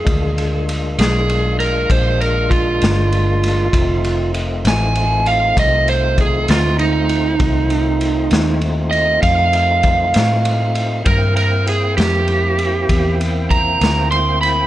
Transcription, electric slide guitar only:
X:1
M:12/8
L:1/8
Q:3/8=65
K:Fmix
V:1 name="Electric slide guitar"
_A2 z A2 B c B F4- | F2 z _a2 f e c _A F E2- | E4 z e f6 | B B _A G4 z b2 c' =b |]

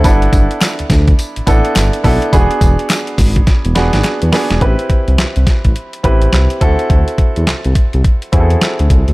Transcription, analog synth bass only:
X:1
M:4/4
L:1/16
Q:"Swing 16ths" 1/4=105
K:Ador
V:1 name="Analog synth bass" clef=bass
G,,,2 G,,, z2 D,, D,,2 z A,,, A,,, z G,,, z B,,, z | E,,, z E,,, z3 ^G,,,2 z E,,, E,,, G,,, z E,, z E,,, | A,,, z2 C,, C,, C,, z A,,, z2 A,,,2 C,, z D,, z | D,, z2 E,, C,, C,, z C,, z2 E,,2 z D,, C,, D,, |]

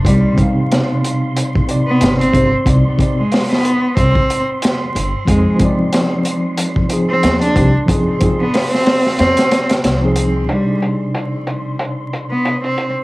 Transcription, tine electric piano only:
X:1
M:4/4
L:1/16
Q:"Swing 16ths" 1/4=92
K:Cm
V:1 name="Tine electric piano"
[C,CEd]2 [C,CEf]8 [C,CEd]4 [C,CEc] z | [C,CEd]2 [C,CEd] z12 z | [F,CEA]2 [F,CEd]8 [F,CEA]4 [F,CEG] z | [F,CEA]2 [F,CEA] z8 z2 [F,CEA]3 |
[C,DEd]16 |]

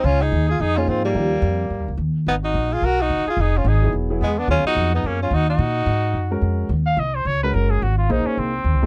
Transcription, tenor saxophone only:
X:1
M:4/4
L:1/8
Q:"Swing" 1/4=216
K:Ebm
V:1 name="Tenor saxophone"
D E2 F E D =C =G,- | =G,6 z2 | C E2 F G E2 F | E D E2 z2 ^G, =B, |
D E2 C B, D E E- | E6 z2 | z8 | z8 |]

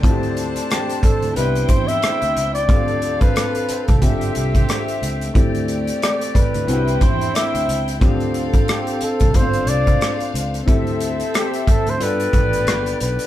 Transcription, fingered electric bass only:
X:1
M:4/4
L:1/16
Q:"Swing 16ths" 1/4=90
K:Ddor
V:1 name="Fingered electric bass" clef=bass
D,,4 z3 D,, C,,2 E,,2 z D,, _D,,2 | D,,4 z3 C,, G,,,2 C,,2 z2 _D,,2 | D,,4 z3 D,, C,,2 E,,2 z D,, _D,,2 | D,,4 z3 C,, G,,,2 C,,2 z2 _D,,2 |
D,,4 z3 D,, G,,2 A,,,2 G,,,2 B,,, z |]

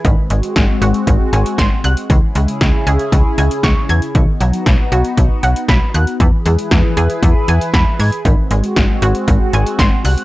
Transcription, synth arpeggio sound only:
X:1
M:4/4
L:1/8
Q:1/4=117
K:G#m
V:1 name="Synth arpeggio sound"
D, G, z F z g ^b f' | E, G, z G z g c' g' | D, F, z F z f b f' | E, G, z G z g b g' |
D, G, z F z g ^b f' |]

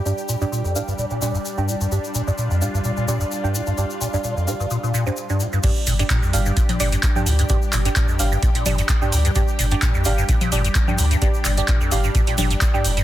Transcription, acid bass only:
X:1
M:4/4
L:1/16
Q:"Swing 16ths" 1/4=129
K:Gm
V:1 name="Acid bass" clef=bass
G,, z B,, G,, B,, F,, B,, G,, B,, B,, B,, G,, z G,, B,, G,, | G,, z B,, G,, B,, F,, B,, G,, B,, B,, B,, G,, z G,, B,, G,, | G,, z B,, G,, B,, F,, B,, G,, B,, B,, B,, G,, z G,, B,, G,, | G,, z B,, G,, B,, F,, B,, G,, B,, B,, B,, G,, z G,, B,, G,, |
G,, z B,, G,, B,, F,, B,, G,, B,, B,, B,, G,, z G,, B,, G,, | G,, z B,, G,, B,, F,, B,, G,, B,, B,, B,, G,, z G,, B,, G,, | G,, z B,, G,, B,, F,, B,, G,, B,, B,, B,, G,, z G,, B,, G,, |]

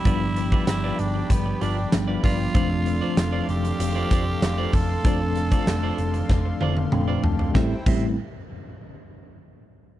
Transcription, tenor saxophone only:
X:1
M:4/4
L:1/8
Q:1/4=96
K:Am
V:1 name="Tenor saxophone"
E2 E D B, D z F- | F3 G4 A- | A6 z2 | z8 |]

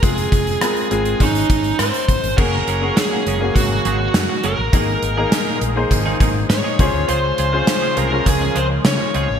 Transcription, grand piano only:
X:1
M:4/4
L:1/16
Q:1/4=102
K:Gblyd
V:1 name="Grand piano"
[A,CFA]3 z [A,CFB]2 [A,CFA]2 [A,DEA]6 z2 | [B,DGA]2 z [B,DGA]3 z [B,DGA]6 z3 | [B,EAB]2 z [B,EAB]3 z [B,EAc]6 z [DFAc]2- | [DFAc]2 z [DFAc]3 z [DFAB]6 z3 |]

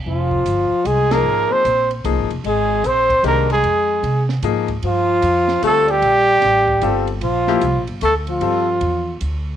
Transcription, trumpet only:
X:1
M:3/4
L:1/8
Q:"Swing" 1/4=151
K:Fdor
V:1 name="Trumpet"
F4 A B- | B c2 z3 | A2 c2 B A- | A3 z3 |
F4 =A G- | G4- G z | F3 z =A F- | F4 z2 |]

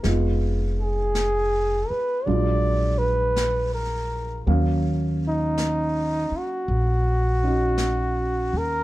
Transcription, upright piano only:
X:1
M:4/4
L:1/8
Q:"Swing" 1/4=54
K:Ebm
V:1 name="Upright piano"
[A,CEF]4 [G,A,=DF]4 | [G,B,Df]4- [G,B,Df] [DEG]3 |]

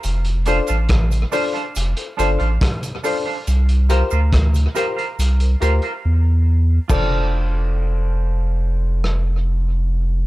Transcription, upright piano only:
X:1
M:4/4
L:1/16
Q:1/4=70
K:F
V:1 name="Upright piano"
z2 [DFAc] z3 [DFAc] z2 [Ac] [DFAc] z3 [DFAc] z | z2 [FGBc] z3 [FGBc] z2 [Bc] [FGBc] z4 z | [DFAc]16 |]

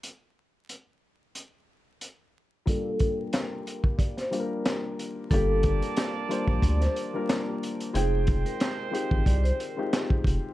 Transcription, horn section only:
X:1
M:4/4
L:1/8
Q:"Swing 16ths" 1/4=91
K:Gphr
V:1 name="Horn section"
z8 | [B,=Ad] z6 z | [B,d=a]6- [B,da] z | [A,cg]6- [A,cg] z |]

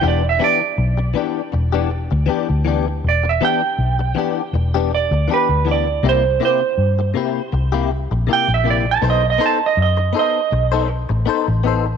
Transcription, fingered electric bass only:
X:1
M:4/4
L:1/16
Q:"Swing 16ths" 1/4=80
K:Em
V:1 name="Fingered electric bass" clef=bass
E,,,2 z2 B,,,2 z2 E,,,3 D,, z D,,3 | E,,,2 z2 B,,,2 z2 E,,,3 D,, z D,,3 | C,,2 z2 G,,2 z2 C,,3 _B,,, z B,,,3 | B,,,2 z2 F,,2 z2 B,,,3 A,,, z A,,,3 |]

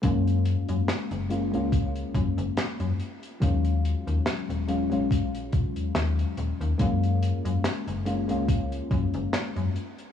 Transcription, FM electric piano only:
X:1
M:4/4
L:1/16
Q:"Swing 16ths" 1/4=71
K:Gb
V:1 name="FM electric piano"
[A,B,DF]6 [A,B,DF] [A,B,DF]6- [A,B,DF] z2 | [G,A,DF]6 [G,A,DF] [G,A,DF]8- [G,A,DF] | [A,B,DF]6 [A,B,DF] [A,B,DF]6- [A,B,DF] z2 |]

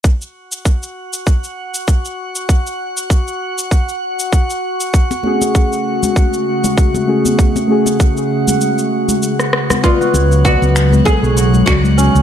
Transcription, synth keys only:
X:1
M:4/4
L:1/8
Q:"Swing 16ths" 1/4=98
K:none
V:1 name="Synth keys"
z8 | z8 | z [A,^C^F^G]6 [A,CFG]- | [A,^C^F^G] [A,CFG]4- [A,CFG] z2 |
z8 |]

